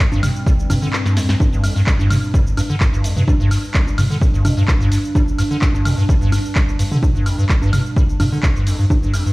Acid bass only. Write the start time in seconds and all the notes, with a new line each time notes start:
0.12 G2
0.23 G2
0.46 G3
0.70 G2
0.82 D3
1.06 G2
1.17 F2
1.29 G2
1.53 G2
1.64 F2
1.76 G2
1.87 G3
1.99 G2
2.10 G2
2.34 G3
2.57 G2
2.70 D3
2.93 G2
3.04 F2
3.17 G2
3.28 G3
3.40 G2
3.51 G2
3.75 G3
3.98 G2
4.10 D3
4.34 G2
4.45 F2
4.57 G2
4.68 G3
4.81 G2
4.92 G2
5.15 G3
5.39 G2
5.51 D3
5.74 G2
5.85 F2
5.98 G2
6.09 G3
6.21 G2
6.32 G2
6.56 G3
6.79 G2
6.91 D3
7.15 G2
7.26 F2
7.38 G2
7.50 G3
7.62 G2
7.73 G2
7.96 G3
8.20 G2
8.32 D3
8.56 G2
8.67 F2
8.79 G2
9.03 G2
9.14 F2
9.26 G2